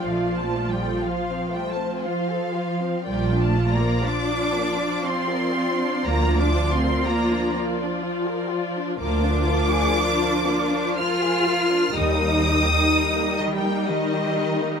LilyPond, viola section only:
\new Staff \with { instrumentName = "Viola section" } { \time 3/4 \key bes \major \tempo 4 = 61 <f f'>2. | <f f'>2.~ | <f f'>2. | \key ees \major <f f'>2. |
<g ees'>2. | }